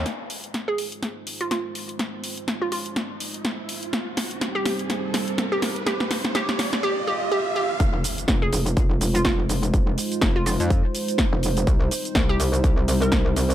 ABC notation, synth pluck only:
X:1
M:4/4
L:1/16
Q:"Swing 16ths" 1/4=124
K:Fm
V:1 name="Synth pluck"
z4 z A z4 z F F z3 | z4 z F F z8 z | z4 z G z6 z G z2 | G2 z2 G2 z2 G2 G2 G2 G2 |
z4 z A z4 z F F z3 | z4 z F F z8 z | z4 z G z4 z B4- B |]